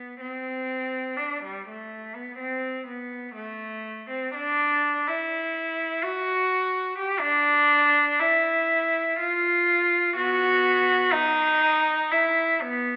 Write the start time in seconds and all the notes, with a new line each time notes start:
Already playing: B3
0.20 C4
1.16 D4
1.43 G3
1.68 A3
2.15 B3
2.38 C4
2.87 B3
3.35 A3
4.09 C4
4.34 D4
5.07 E4
6.03 F#4
6.98 G4
7.20 D4
8.20 E4
9.19 F4
10.16 B3 F#4
11.12 D#4
12.11 E4
12.61 B3